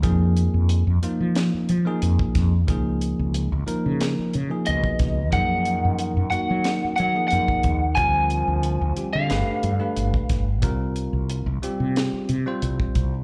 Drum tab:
HH |x-x-x-x-x-x-x-x-|x-x-x-x-x-x-x-x-|x-x-x-x-x-x-x-x-|x-x-x-x-x-x-x-x-|
SD |--------o-----o-|--------o-----o-|--------o-------|--------o-----o-|
BD |o------------oo-|o------------oo-|o------------oo-|o------------oo-|

HH |x-x-x-x-x-x-x-x-|
SD |--------o-------|
BD |o------------oo-|